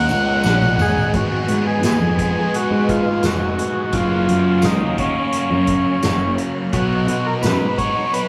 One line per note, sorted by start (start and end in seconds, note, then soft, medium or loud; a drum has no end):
0.00 0.44 C#4 medium
0.00 1.14 A#4 medium
0.00 1.11 C#5 medium
0.00 1.11 D#5 medium
0.00 1.11 F#5 medium
0.00 1.12 F#5 loud
0.00 1.11 A#5 medium
0.09 0.42 C#2 medium
0.09 0.79 D#4 medium
0.09 tambourine medium
0.43 0.76 A#1 medium
0.43 1.15 C#4 medium
0.43 snare medium
0.43 tambourine loud
0.61 high tom medium
0.61 tambourine soft
0.78 1.11 G#1 medium
0.78 1.15 D#4 medium
0.78 1.13 G#4 loud
0.78 mid tom medium
0.78 tambourine medium
0.96 floor tom medium
0.96 tambourine soft
1.14 1.47 G#1 medium
1.14 2.17 G#2 medium
1.14 2.17 D#3 medium
1.14 2.18 G#3 medium
1.14 2.18 B3 medium
1.14 2.18 D#4 medium
1.14 1.64 F#4 medium
1.14 2.17 G#4 medium
1.14 3.91 B4 medium
1.14 3.91 D#5 medium
1.14 3.91 G#5 medium
1.14 kick medium
1.14 closed hi-hat medium
1.48 1.85 G#2 medium
1.48 closed hi-hat medium
1.67 1.83 G#4 medium
1.83 2.00 D#2 medium
1.83 2.57 G#4 medium
1.83 snare medium
1.83 closed hi-hat medium
1.83 tambourine medium
2.00 2.33 F2 medium
2.18 3.93 G#2 medium
2.18 3.93 D#3 medium
2.18 3.92 G#3 medium
2.18 3.92 B3 medium
2.18 3.92 D#4 medium
2.18 3.91 G#4 medium
2.18 kick medium
2.18 closed hi-hat medium
2.54 2.91 F#4 loud
2.54 closed hi-hat medium
2.71 3.03 G#2 medium
2.89 3.25 F4 medium
2.89 kick medium
2.89 closed hi-hat medium
3.23 3.56 F1 medium
3.23 3.97 F#4 medium
3.23 snare loud
3.23 closed hi-hat medium
3.23 tambourine medium
3.59 closed hi-hat medium
3.92 4.26 F#1 medium
3.92 4.96 F#2 medium
3.92 4.97 C#3 medium
3.92 5.01 F#3 medium
3.92 5.00 A#3 medium
3.92 4.98 C#4 medium
3.92 4.66 F4 medium
3.92 6.70 C#5 medium
3.92 6.70 F5 medium
3.92 8.28 A#5 medium
3.92 kick medium
3.92 closed hi-hat medium
3.97 4.98 F#4 medium
4.29 4.65 F#2 medium
4.29 closed hi-hat medium
4.62 4.80 C#2 medium
4.62 4.97 D#4 medium
4.62 snare loud
4.62 closed hi-hat medium
4.62 tambourine medium
4.81 5.13 D#2 medium
4.98 6.72 C#3 medium
4.98 6.73 F#3 medium
4.98 6.72 A#3 medium
4.98 6.71 C#4 medium
4.98 6.35 C#4 medium
4.98 6.76 F#4 medium
4.98 kick medium
4.98 closed hi-hat medium
5.02 6.73 F#2 medium
5.33 closed hi-hat medium
5.50 5.83 F#2 medium
5.67 kick medium
5.67 closed hi-hat medium
6.02 6.36 F#1 medium
6.02 snare loud
6.02 closed hi-hat medium
6.02 tambourine medium
6.38 closed hi-hat soft
6.73 7.06 B1 medium
6.73 7.76 B2 medium
6.73 7.80 F#3 medium
6.73 7.79 B3 medium
6.73 7.77 D#4 medium
6.73 7.27 F#4 medium
6.73 7.78 F#4 medium
6.73 8.28 D#5 medium
6.73 kick medium
6.73 closed hi-hat medium
7.08 7.44 B2 medium
7.08 closed hi-hat medium
7.26 7.34 A#4 medium
7.42 7.59 F#2 medium
7.42 7.79 B4 medium
7.42 snare loud
7.42 closed hi-hat medium
7.42 tambourine medium
7.61 7.93 G#2 medium
7.78 8.28 B2 medium
7.78 8.28 F#3 medium
7.78 8.28 B3 medium
7.78 8.28 D#4 medium
7.78 8.28 F#4 medium
7.78 8.14 C#5 medium
7.78 kick medium
7.78 closed hi-hat medium
8.13 8.28 B4 medium
8.13 closed hi-hat medium